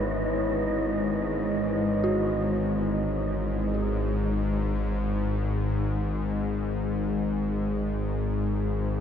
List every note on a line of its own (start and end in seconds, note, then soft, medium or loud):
0.00 2.88 G#1 medium
0.00 2.88 G#2 medium
0.00 2.89 G#3 medium
0.00 2.90 E4 medium
0.00 2.91 B4 medium
0.00 2.90 C#5 medium
0.00 2.91 D#5 medium
2.04 8.82 F#4 soft
2.89 9.00 G#1 medium
2.89 9.00 G#2 medium